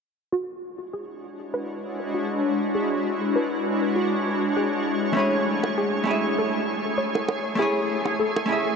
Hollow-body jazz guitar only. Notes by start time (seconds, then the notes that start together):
5.13 A3 C#4 E4
5.18 G#4 C#5
6.04 A3 C#4 E4
6.09 G#4 E5
7.55 A3 C#4 E4
7.61 G#4 C#5
8.46 A3 C#4 E4
8.51 G#4 E5